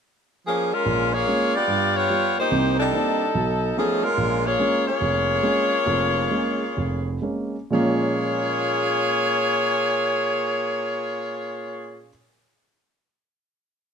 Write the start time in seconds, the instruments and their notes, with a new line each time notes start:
0.47 saxophone section F3 A#3 C#4 G#4
0.73 saxophone section G#3 C#4 F4 A#4
0.86 grand piano A#1
1.13 saxophone section A#3 F4 G#4 C#5
1.27 grand piano G#3 A#3 C#4
1.55 saxophone section B3 F4 G4 D5
1.68 grand piano G2
1.96 saxophone section B3 F4 G4 C#5
2.10 grand piano G3 B3 F4
2.39 saxophone section A#3 D#4 G4 C5
2.51 grand piano C2 C3
2.79 saxophone section G3 D4 D#4 A4
2.93 grand piano A#3 C4 D4 D#4
3.35 grand piano B1
3.77 saxophone section F3 A3 C#4 G#4, grand piano A3 B3 C#4 D#4
4.03 saxophone section G#3 C#4 F4 A#4
4.18 grand piano A#1
4.46 saxophone section A#3 F4 G#4 C#5
4.59 grand piano G#3 A#3 C#4
4.87 saxophone section A#3 F4 G#4 C#5
5.01 grand piano F1
5.43 grand piano G#3 A#3 C#4
5.86 grand piano F1 F2
6.31 grand piano G#3 A#3 C#4
6.77 grand piano F1
7.22 grand piano G#3 A#3 C#4
7.70 grand piano A#2 F3 G#3 A#3 C#4, saxophone section A#3 F4 G#4 C#5